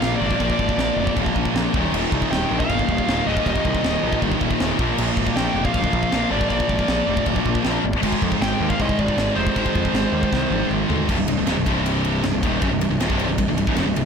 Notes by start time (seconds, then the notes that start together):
Already playing: A#2 F3 A#3 F4 D5 F5
0.02 A#1, snare, china
0.16 D5
0.21 G#1 A#2 F3 A#3
0.31 kick
0.36 A#2 D5
0.40 A#1 F3 A#3, kick, china
0.50 kick
0.59 G#1, kick
0.69 kick
0.77 A#1, snare, china
0.96 F1
1.07 kick
1.16 D1 A#2 F3 A#3, kick, china
1.26 kick
1.36 A#1, kick
1.45 kick
1.54 A#1, snare, china
1.74 D#1 D#2 A#2 D#3 A#3 G4 D#5, kick
1.92 D#1, crash, china
2.12 C2, kick
2.22 kick
2.31 D#1 G5, snare, china
2.50 A#1 D#2 A#2 D#3
2.60 F5, kick
2.70 G1, kick, china
2.79 kick
2.88 D#1, kick
2.98 kick
3.07 D#1 D#2 A#2 D#3, snare, china
3.26 C1 D#2 A#2 D#3 D#5
3.37 kick
3.46 D#1 D#5, kick, china
3.56 kick
3.65 C2, kick
3.75 kick
3.84 D#1, snare, china
4.01 A#1 D#2 A#2 D#3
4.13 kick
4.22 G1, kick, china
4.32 kick
4.41 D#1, kick
4.51 kick
4.59 D#1 D#2 A#2 D#3, snare, china
4.78 A#1 A#2 F3 A#3 F4 D5, kick
4.98 A#1, crash, china
5.17 G#1, kick
5.27 kick
5.36 A#1 G5, snare, china
5.55 F1 A#2 F3 A#3
5.65 F5, kick
5.74 D1, kick, china
5.84 kick
5.93 A#1, kick
6.03 kick
6.11 A#1 A#2 F3 A#3, snare, china
6.30 G#1 A#2 F3 A#3 D5
6.41 kick
6.49 A#1 D5, kick, china
6.60 kick
6.69 G#1, kick
6.79 kick
6.88 A#1, snare, china
7.07 F1 A#2 F3 A#3
7.17 kick
7.26 D1, kick, china
7.36 kick
7.46 A#1, kick
7.55 kick
7.64 A#1 A#2 F3 A#3, snare, china
7.84 G#1
7.93 kick
8.02 G#1 G#2 D#3 G#3 D#4 C5, kick, crash, china
8.13 kick
8.22 F2, kick
8.32 kick
8.41 G#1 G5, snare, china
8.60 D#2
8.70 F5, kick
8.78 C2 G#2 D#3 G#3 D#5, kick, china
8.89 kick
8.99 G#1 D5, kick
9.08 kick
9.17 G#1, snare, china
9.36 F1 G#2 D#3 G#3 C5
9.47 kick
9.55 G#1 G#2 D#3 G#3, kick, china
9.66 kick
9.75 F2, kick
9.85 kick
9.94 G#1, snare, china
10.12 D#2
10.23 kick
10.32 C2 G#2 D#3 G#3, kick, snare
10.51 G#1, high tom
10.71 G#1, mid tom
10.88 D2 G#2 D#3 G#3, floor tom
11.08 C1 C2 G2 G3 D#4 C5, kick, crash
11.18 C1 C2 G2
11.28 C1 C2 G2, ride
11.38 C1 C2 G2
11.47 D#1 D#2 A#2, snare, ride
11.57 C1 C2 G2
11.66 C1 C2 G2 C3, kick, ride
11.86 ride
12.05 ride
12.23 C1 C2 G2, snare, ride
12.34 C1 C2 G2
12.43 D#1 D#2 A#2 D#3, kick, ride
12.62 F#1 F#2 C#3, kick, ride
12.71 C1 C2 G2
12.81 C1 C2 G2, ride
12.90 C1 C2 G2
13.00 D#1 D#2 A#2, snare, ride
13.10 C1 C2 G2 C3, kick
13.19 ride
13.28 C1 C2 G2
13.38 C1 C2 G2, kick, ride
13.48 C1 C2 G2
13.57 C1 C2 G2, ride
13.67 C#1 C#2 G#2, kick
13.76 F#1 F#2 C#3, snare, ride
13.86 C1 C2 G2
13.96 C1 C2 G2, ride